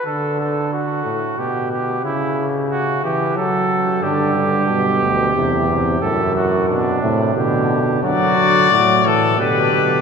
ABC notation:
X:1
M:3/4
L:1/8
Q:1/4=90
K:G
V:1 name="Trumpet"
z6 | z6 | z6 | z6 |
d3 A B2 |]
V:2 name="Trumpet"
A A F2 G G | E z F G A2 | G6 | A F D2 G2 |
F3 z G2 |]
V:3 name="Trombone" clef=bass
D,3 A,, B,,2 | ^C,3 E, F,2 | D, D, B,,2 C, C, | A,, z B,, C, D,2 |
F,2 F, E, D,2 |]
V:4 name="Bass trombone" clef=bass
z6 | z6 | G,,3 D,, E,,2 | F,,3 A,, B,,2 |
D, D, A,,2 B,, B,, |]